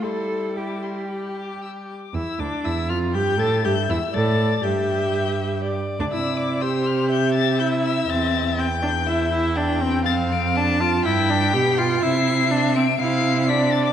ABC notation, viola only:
X:1
M:4/4
L:1/16
Q:1/4=122
K:C
V:1 name="Viola"
G,12- G,2 z2 | E2 D2 E2 F2 G2 A2 G2 E2 | A4 G8- G z2 D | E4 G8 E4 |
C4 C2 D2 E2 E2 D2 C2 | C4 D2 F2 E2 D2 G2 F2 | E4 D2 C2 E4 D4 |]